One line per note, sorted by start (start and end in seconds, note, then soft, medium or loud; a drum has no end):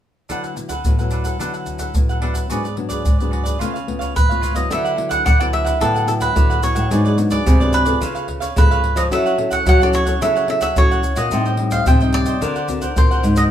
0.29 0.82 D3 medium
0.29 0.53 F#3 soft
0.29 0.53 B3 soft
0.29 0.42 D4 medium
0.29 0.53 E4 soft
0.29 0.42 A4 medium
0.29 0.43 B4 medium
0.29 0.42 F#5 medium
0.29 pandeiro medium
0.29 shaker medium
0.29 surdo soft
0.44 0.55 A4 soft
0.44 0.56 F#5 soft
0.44 pandeiro soft
0.44 shaker soft
0.56 0.73 F#3 soft
0.56 0.73 B3 soft
0.56 0.73 E4 medium
0.56 muted cavaquinho stroke soft
0.56 pandeiro medium
0.56 shaker medium
0.69 0.97 A4 soft
0.69 0.97 B4 medium
0.69 0.96 F#5 medium
0.69 pandeiro medium
0.69 shaker medium
0.69 surdo soft
0.85 1.37 A2 medium
0.85 0.93 F#3 soft
0.85 0.93 B3 soft
0.85 0.93 E4 soft
0.85 pandeiro medium
0.85 shaker medium
0.85 surdo medium
0.99 1.36 F#3 medium
0.99 1.36 B3 soft
0.99 1.36 E4 medium
0.99 1.11 A4 soft
0.99 1.12 B4 soft
0.99 1.11 F#5 soft
0.99 pandeiro soft
0.99 shaker soft
1.11 1.24 D4 soft
1.11 1.25 A4 soft
1.11 1.24 B4 soft
1.11 1.23 F#5 soft
1.11 pandeiro soft
1.11 shaker medium
1.24 1.39 A4 soft
1.24 1.38 B4 soft
1.24 1.38 F#5 medium
1.24 pandeiro soft
1.24 shaker medium
1.24 surdo soft
1.39 1.93 D3 medium
1.39 1.91 F#3 soft
1.39 1.91 B3 soft
1.39 1.52 D4 medium
1.39 1.91 E4 soft
1.39 1.53 A4 medium
1.39 1.53 B4 medium
1.39 1.53 F#5 medium
1.39 pandeiro medium
1.39 shaker medium
1.39 surdo medium
1.54 1.80 A4 soft
1.54 1.79 B4 soft
1.54 1.78 F#5 soft
1.54 pandeiro soft
1.54 shaker soft
1.66 pandeiro soft
1.66 shaker medium
1.66 surdo soft
1.79 1.94 A4 soft
1.79 1.93 B4 medium
1.79 1.93 F#5 medium
1.79 pandeiro medium
1.79 shaker medium
1.79 surdo soft
1.94 2.48 A2 medium
1.94 2.19 F#3 soft
1.94 2.19 B3 soft
1.94 2.19 E4 medium
1.94 muted cavaquinho stroke soft
1.94 pandeiro medium
1.94 shaker medium
1.94 surdo medium
2.09 2.21 A4 soft
2.09 2.22 B4 soft
2.09 2.22 F#5 soft
2.09 pandeiro soft
2.09 shaker soft
2.22 2.46 F#3 soft
2.22 2.46 B3 medium
2.22 2.35 D4 medium
2.22 2.46 E4 medium
2.22 2.35 A4 medium
2.22 2.34 B4 medium
2.22 2.33 F#5 medium
2.22 pandeiro medium
2.34 2.49 A4 soft
2.34 2.48 B4 soft
2.34 2.48 F#5 soft
2.34 pandeiro medium
2.34 shaker medium
2.34 surdo soft
2.50 3.03 G#2 medium
2.50 2.67 F#3 soft
2.50 2.67 B3 medium
2.50 2.67 D4 medium
2.50 2.63 F#4 medium
2.50 2.63 G#4 medium
2.50 2.64 B4 medium
2.50 2.63 D5 medium
2.50 pandeiro medium
2.50 shaker medium
2.50 surdo soft
2.64 2.75 G#4 soft
2.64 2.76 B4 soft
2.64 2.76 D5 soft
2.64 pandeiro soft
2.64 shaker soft
2.76 3.04 F#3 soft
2.76 3.04 B3 medium
2.76 3.04 D4 medium
2.76 muted cavaquinho stroke soft
2.76 pandeiro soft
2.89 3.18 G#4 soft
2.89 3.17 B4 medium
2.89 3.17 D5 medium
2.89 pandeiro medium
2.89 shaker medium
2.89 surdo soft
3.05 3.58 G#2 medium
3.05 pandeiro medium
3.05 shaker medium
3.05 surdo medium
3.18 3.57 F#3 medium
3.18 3.57 B3 medium
3.18 3.57 D4 medium
3.18 3.31 G#4 soft
3.18 3.31 B4 soft
3.18 3.31 D5 soft
3.18 pandeiro soft
3.18 shaker soft
3.31 3.45 F#4 soft
3.31 3.45 G#4 soft
3.31 3.44 B4 soft
3.31 3.42 D5 soft
3.31 pandeiro soft
3.43 3.59 G#4 soft
3.43 3.58 B4 medium
3.43 3.58 D5 medium
3.43 pandeiro medium
3.43 shaker medium
3.43 surdo soft
3.59 4.13 C#3 medium
3.59 3.77 A3 soft
3.59 3.77 B3 soft
3.59 3.72 F4 medium
3.59 3.77 F4 soft
3.59 3.73 B4 medium
3.59 3.73 C#5 medium
3.59 3.72 F5 medium
3.59 pandeiro medium
3.59 shaker medium
3.59 surdo medium
3.74 4.00 B4 soft
3.74 3.99 C#5 soft
3.74 3.98 F5 soft
3.74 pandeiro soft
3.74 shaker soft
3.87 4.14 A3 soft
3.87 4.14 B3 soft
3.87 4.14 F4 medium
3.87 pandeiro soft
3.87 surdo soft
3.99 4.14 B4 soft
3.99 4.14 C#5 medium
3.99 4.13 F5 medium
3.99 pandeiro medium
3.99 shaker medium
3.99 surdo soft
4.15 4.68 G#2 medium
4.15 4.54 B4 medium
4.15 muted cavaquinho stroke soft
4.15 pandeiro medium
4.15 shaker medium
4.15 surdo medium
4.29 4.53 A3 soft
4.29 4.53 B3 soft
4.29 4.54 F4 medium
4.29 4.41 B4 soft
4.29 4.42 C#5 soft
4.29 4.42 F5 soft
4.29 pandeiro soft
4.29 shaker soft
4.41 4.55 F4 medium
4.41 4.55 B4 medium
4.41 4.55 C#5 medium
4.41 4.53 F5 medium
4.41 pandeiro medium
4.41 shaker medium
4.54 4.93 F#3 medium
4.54 4.93 B3 medium
4.54 4.94 E4 medium
4.54 4.69 B4 soft
4.54 4.69 C#5 soft
4.54 4.69 D#5 medium
4.54 4.68 F5 soft
4.54 pandeiro medium
4.54 shaker medium
4.54 surdo soft
4.70 5.17 D3 medium
4.70 5.23 D3 soft
4.70 4.83 D4 soft
4.70 4.83 A4 soft
4.70 4.84 B4 medium
4.70 5.10 E5 medium
4.70 4.83 F#5 medium
4.70 pandeiro medium
4.70 shaker medium
4.70 surdo medium
4.85 4.96 A4 medium
4.85 4.96 B4 medium
4.85 4.96 F#5 medium
4.85 pandeiro soft
4.85 shaker soft
4.96 5.24 F#3 medium
4.96 5.24 B3 medium
4.96 5.24 E4 medium
4.96 muted cavaquinho stroke soft
4.96 pandeiro medium
5.09 5.24 A4 medium
5.09 5.24 B4 medium
5.09 5.23 F#5 medium
5.09 5.24 F#5 medium
5.09 pandeiro medium
5.09 shaker medium
5.09 surdo soft
5.25 5.78 A2 soft
5.25 5.73 D3 medium
5.25 5.38 D4 soft
5.25 5.38 A4 soft
5.25 5.39 B4 soft
5.25 5.39 F#5 medium
5.25 5.38 F#5 soft
5.25 pandeiro medium
5.25 shaker medium
5.25 surdo medium
5.39 5.77 F#3 medium
5.39 5.77 B3 medium
5.39 5.77 E4 medium
5.39 5.66 A4 soft
5.39 5.65 B4 medium
5.39 5.46 D5 medium
5.39 5.63 F#5 medium
5.39 pandeiro soft
5.39 shaker soft
5.53 5.82 E5 medium
5.53 pandeiro medium
5.65 5.80 A4 soft
5.65 5.79 B4 medium
5.65 5.78 F#5 medium
5.65 pandeiro medium
5.65 shaker medium
5.65 surdo soft
5.80 6.28 A2 medium
5.80 6.34 D3 medium
5.80 6.04 F#3 soft
5.80 6.05 B3 medium
5.80 5.93 D4 soft
5.80 6.05 E4 medium
5.80 5.94 A4 soft
5.80 6.07 A4 medium
5.80 5.94 B4 soft
5.80 5.93 F#5 soft
5.80 pandeiro medium
5.80 shaker medium
5.80 surdo medium
5.94 6.07 A4 medium
5.94 6.07 B4 medium
5.94 6.07 F#5 medium
5.94 pandeiro soft
5.94 shaker soft
6.07 6.31 F#3 medium
6.07 6.31 B3 medium
6.07 6.32 E4 medium
6.07 6.13 A4 medium
6.07 muted cavaquinho stroke soft
6.07 pandeiro medium
6.07 shaker medium
6.20 6.49 A4 medium
6.20 6.48 B4 medium
6.20 6.63 B4 medium
6.20 6.48 F#5 medium
6.20 pandeiro medium
6.20 shaker medium
6.20 surdo soft
6.36 6.88 A2 soft
6.36 6.59 D3 medium
6.36 6.59 F#3 medium
6.36 6.59 B3 soft
6.36 6.59 E4 medium
6.36 pandeiro medium
6.36 shaker medium
6.36 surdo medium
6.50 6.76 A4 medium
6.50 6.75 B4 medium
6.50 6.74 F#5 medium
6.50 pandeiro soft
6.50 shaker soft
6.63 6.86 F#3 medium
6.63 6.86 B3 medium
6.63 6.87 E4 medium
6.63 7.34 C#5 medium
6.63 pandeiro medium
6.63 shaker medium
6.75 6.88 A2 medium
6.75 6.90 A4 soft
6.75 6.89 B4 soft
6.75 6.89 F#5 medium
6.75 pandeiro medium
6.75 shaker medium
6.75 surdo soft
6.90 7.43 G#2 medium
6.90 7.38 G#2 medium
6.90 7.14 F#3 medium
6.90 7.14 B3 soft
6.90 7.14 D4 medium
6.90 7.03 F#4 soft
6.90 7.04 G#4 soft
6.90 7.04 B4 soft
6.90 7.03 D5 medium
6.90 pandeiro medium
6.90 shaker medium
6.90 surdo soft
7.05 7.17 G#4 medium
7.05 7.17 B4 medium
7.05 7.17 D5 medium
7.05 pandeiro soft
7.05 shaker soft
7.18 7.44 F#3 medium
7.18 7.44 B3 soft
7.18 7.44 D4 medium
7.18 muted cavaquinho stroke soft
7.18 pandeiro medium
7.18 shaker medium
7.31 7.45 G#4 medium
7.31 7.45 B4 medium
7.31 7.44 D5 medium
7.31 7.74 D5 medium
7.31 pandeiro medium
7.31 shaker medium
7.31 surdo soft
7.46 7.99 G#2 medium
7.46 7.93 C3 medium
7.46 7.58 F#4 soft
7.46 7.59 G#4 medium
7.46 7.59 B4 medium
7.46 7.59 D5 medium
7.46 pandeiro medium
7.46 shaker medium
7.46 surdo medium
7.60 7.83 F#3 medium
7.60 7.84 B3 medium
7.60 7.84 D4 medium
7.60 7.86 G#4 medium
7.60 7.85 B4 medium
7.60 7.84 D5 medium
7.60 pandeiro soft
7.60 shaker soft
7.73 8.52 B4 medium
7.73 pandeiro medium
7.73 shaker medium
7.85 8.37 B3 medium
7.85 8.38 F4 medium
7.85 8.00 G#4 medium
7.85 8.38 A4 medium
7.85 8.00 B4 medium
7.85 7.99 D5 medium
7.85 pandeiro medium
7.85 shaker medium
7.85 surdo soft
8.00 8.48 C#3 medium
8.00 8.54 C#3 medium
8.00 8.13 F4 soft
8.00 8.14 B4 soft
8.00 8.14 C#5 soft
8.00 8.14 F5 medium
8.00 pandeiro medium
8.00 shaker medium
8.00 surdo medium
8.15 8.27 B4 medium
8.15 8.27 C#5 medium
8.15 8.27 F5 medium
8.15 pandeiro soft
8.15 shaker soft
8.28 muted cavaquinho stroke soft
8.28 pandeiro soft
8.28 surdo soft
8.40 8.69 B4 soft
8.40 8.68 C#5 medium
8.40 8.68 F5 medium
8.40 pandeiro medium
8.40 shaker medium
8.40 surdo soft
8.56 9.09 G#2 soft
8.56 8.80 C#3 medium
8.56 8.93 B3 medium
8.56 8.92 F4 soft
8.56 8.93 A4 medium
8.56 9.00 B4 medium
8.56 pandeiro medium
8.56 shaker medium
8.56 surdo medium
8.71 8.97 B4 medium
8.71 8.96 C#5 medium
8.71 8.95 F5 medium
8.71 pandeiro soft
8.71 shaker soft
8.84 pandeiro medium
8.96 9.08 F3 medium
8.96 9.11 B4 soft
8.96 9.10 C#5 medium
8.96 9.02 D#5 medium
8.96 9.09 F5 medium
8.96 pandeiro medium
8.96 shaker medium
8.96 surdo soft
9.11 9.64 F#3 medium
9.11 9.58 F#3 medium
9.11 9.34 C#4 medium
9.11 9.24 E4 soft
9.11 9.35 E4 medium
9.11 9.24 A4 medium
9.11 9.35 A4 medium
9.11 9.25 C#5 soft
9.11 9.52 E5 medium
9.11 9.24 F#5 medium
9.11 pandeiro medium
9.11 shaker medium
9.11 surdo soft
9.26 9.37 A4 soft
9.26 9.38 C#5 medium
9.26 9.38 F#5 medium
9.26 pandeiro soft
9.26 shaker soft
9.38 9.64 C#4 medium
9.38 9.65 E4 medium
9.38 9.65 A4 medium
9.38 muted cavaquinho stroke soft
9.38 pandeiro medium
9.50 9.65 A4 soft
9.50 9.65 C#5 medium
9.50 9.64 F#5 medium
9.50 9.65 F#5 medium
9.50 pandeiro medium
9.50 shaker medium
9.50 surdo soft
9.66 10.13 F#3 medium
9.66 9.79 E4 soft
9.66 9.79 A4 medium
9.66 9.79 C#5 medium
9.66 9.78 F#5 medium
9.66 9.80 F#5 medium
9.66 pandeiro medium
9.66 shaker medium
9.66 surdo medium
9.80 10.04 C#4 medium
9.80 10.04 E4 medium
9.80 10.07 A4 medium
9.80 10.05 A4 medium
9.80 10.05 C#5 medium
9.80 9.88 D5 medium
9.80 10.04 F#5 medium
9.80 pandeiro soft
9.80 shaker soft
9.93 10.20 C#5 medium
9.93 pandeiro medium
9.93 shaker medium
10.05 10.17 C#4 medium
10.05 10.17 E4 medium
10.05 10.17 A4 medium
10.05 10.20 A4 medium
10.05 10.20 C#5 medium
10.05 10.19 F#5 medium
10.05 pandeiro medium
10.05 shaker medium
10.05 surdo soft
10.21 10.68 C#3 medium
10.21 10.74 F#3 medium
10.21 10.45 C#4 medium
10.21 10.34 E4 soft
10.21 10.45 E4 medium
10.21 10.34 A4 soft
10.21 10.45 A4 medium
10.21 10.35 C#5 soft
10.21 10.49 E5 medium
10.21 10.34 F#5 medium
10.21 pandeiro medium
10.21 shaker medium
10.21 surdo medium
10.35 10.48 A4 medium
10.35 10.48 C#5 medium
10.35 10.48 F#5 medium
10.35 pandeiro soft
10.35 shaker soft
10.48 10.65 C#4 medium
10.48 10.65 E4 medium
10.48 10.65 A4 medium
10.48 10.61 E5 medium
10.48 muted cavaquinho stroke soft
10.48 pandeiro medium
10.61 10.89 A4 medium
10.61 10.89 C#5 medium
10.61 10.75 E5 medium
10.61 10.88 F#5 medium
10.61 pandeiro medium
10.61 shaker medium
10.61 surdo soft
10.76 11.29 C#3 medium
10.76 11.00 F#3 medium
10.76 11.12 C#4 soft
10.76 11.12 E4 medium
10.76 11.13 A4 medium
10.76 11.20 C#5 medium
10.76 pandeiro medium
10.76 shaker medium
10.76 surdo medium
10.91 11.17 A4 soft
10.91 11.16 C#5 medium
10.91 11.15 F#5 medium
10.91 pandeiro soft
10.91 shaker soft
11.03 pandeiro medium
11.03 shaker medium
11.16 11.29 A#2 medium
11.16 11.31 A4 soft
11.16 11.30 C#5 medium
11.16 11.69 D#5 medium
11.16 11.30 F#5 medium
11.16 pandeiro medium
11.16 shaker medium
11.16 surdo soft
11.31 11.78 A2 medium
11.31 11.84 A2 medium
11.31 11.55 G3 soft
11.31 11.55 C4 soft
11.31 11.56 D#4 medium
11.31 11.44 A4 soft
11.31 11.45 C5 soft
11.31 11.45 D#5 soft
11.31 11.45 G5 medium
11.31 pandeiro medium
11.31 shaker medium
11.31 surdo soft
11.45 11.57 C5 soft
11.45 11.58 D#5 medium
11.45 11.58 G5 medium
11.45 pandeiro soft
11.45 shaker soft
11.57 11.85 G3 medium
11.57 11.85 C4 soft
11.57 11.85 D#4 medium
11.57 muted cavaquinho stroke soft
11.57 pandeiro medium
11.71 11.86 C5 medium
11.71 11.85 D#5 medium
11.71 11.85 F5 medium
11.71 11.85 G5 medium
11.71 pandeiro medium
11.71 shaker medium
11.71 surdo soft
11.86 12.40 A2 medium
11.86 12.33 C3 medium
11.86 11.99 A4 soft
11.86 12.00 C5 soft
11.86 12.00 D#5 soft
11.86 12.15 G5 medium
11.86 11.99 G5 medium
11.86 pandeiro medium
11.86 shaker medium
11.86 surdo medium
12.00 12.38 G3 medium
12.00 12.38 C4 medium
12.00 12.39 D#4 medium
12.00 12.27 C5 medium
12.00 12.26 D#5 medium
12.00 12.25 G5 medium
12.00 pandeiro soft
12.00 shaker soft
12.13 12.93 D5 medium
12.13 pandeiro medium
12.26 12.41 C5 soft
12.26 12.40 D#5 medium
12.26 12.40 G5 medium
12.26 pandeiro medium
12.26 shaker medium
12.26 surdo soft
12.41 12.88 D3 medium
12.41 12.94 D3 medium
12.41 12.58 C4 soft
12.41 12.54 D4 soft
12.41 12.58 F#4 medium
12.41 12.55 A#4 soft
12.41 12.59 A#4 medium
12.41 12.55 C5 soft
12.41 12.54 F#5 soft
12.41 pandeiro medium
12.41 shaker medium
12.41 surdo medium
12.56 12.68 A#4 medium
12.56 12.68 C5 medium
12.56 12.68 F#5 medium
12.56 pandeiro soft
12.56 shaker soft
12.68 12.85 C4 medium
12.68 12.86 F#4 medium
12.68 12.86 A#4 medium
12.68 muted cavaquinho stroke soft
12.68 pandeiro medium
12.68 shaker medium
12.68 surdo soft
12.81 13.10 A#4 medium
12.81 13.09 C5 medium
12.81 13.09 F#5 medium
12.81 pandeiro medium
12.81 shaker medium
12.81 surdo soft
12.96 13.21 A#2 medium
12.96 13.49 D3 soft
12.96 13.48 C4 medium
12.96 13.48 F#4 soft
12.96 13.48 A#4 medium
12.96 13.36 C5 medium
12.96 pandeiro medium
12.96 shaker medium
12.96 surdo medium
13.11 13.37 A#4 medium
13.11 13.36 C5 medium
13.11 13.35 F#5 medium
13.11 pandeiro soft
13.11 shaker soft
13.23 13.49 G#2 medium
13.23 pandeiro medium
13.23 shaker medium
13.36 13.51 A#4 soft
13.36 13.50 C5 medium
13.36 13.42 D#5 medium
13.36 13.50 F#5 medium
13.36 pandeiro medium
13.36 shaker medium
13.36 surdo soft